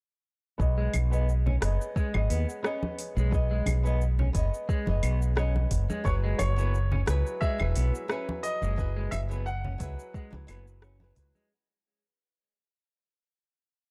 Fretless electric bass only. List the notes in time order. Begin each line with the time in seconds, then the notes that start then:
0.60 B1
0.94 B1
1.62 F#1
2.14 G#1
2.30 D#2
3.16 B1
3.66 B1
4.35 F#1
4.87 F#1
5.03 B1
5.71 F#1
6.05 F#1
6.39 F#1
7.08 C#2
7.60 E1
7.76 B1
8.62 F#1
9.12 F#1
9.80 C#2
10.33 C#2
10.49 F#1
11.17 C#2